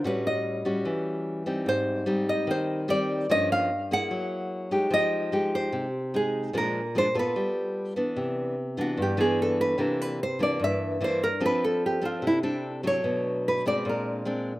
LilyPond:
<<
  \new Staff \with { instrumentName = "Nylon-string guitar" } { \time 4/4 \key g \phrygian \tempo 4 = 148 ces''8 ees''2. r8 | c''4. ees''8 c''4 d''4 | ees''8 f''4 ges''2 r8 | ees''4. c''4. aes'4 |
bes'4 c''8 ces''2 r8 | \key c \major r4. fis'8 g'8 aes'8 a'8 b'8 | bes'8 b'8 c''8 d''8 e''4 c''8 bes'8 | b'8 a'8 g'8 f'8 e'8 r4 des''8~ |
des''4 b'8 d''8 bes'4 r4 | }
  \new Staff \with { instrumentName = "Nylon-string guitar" } { \time 4/4 \key g \phrygian << { <g cis' fis'>4. <g cis' fis'>2 <g c' ees'>8~ | <g c' ees'>4 <g c' ees'>2 <g c' ees'>4 | <f bes des'>4 r8 <bes fes' aes'>2 <aes ees' g'>8~ | <aes ees' g'>4 <aes ees' g'>4. r8 <aes ees'>4 |
<f aes d'>8 r8 <f aes d'>8 <ces' f' a'>2 <fes b d'>8~ | \key c \major <fes b d'>4 r8 <e b d'>4 <e b d'>4. | <e bes d'>4 r8 <e bes d'>4. <e bes d'>8 r8 | <c' d' a'>4. <c' d' a'>4 <c' d' a'>4 <fis a d'>8~ |
<fis a d'>4. <aes c' d'>4. <aes c' d'>8 r8 | } \\ { a,2 e2 | aes,2 ees2 | g,2 ges2 | f2 c2 |
bes,2 g2 | c2 g,2 | c2 g,2 | f2 c2 |
b,2 bes,2 | } >> }
>>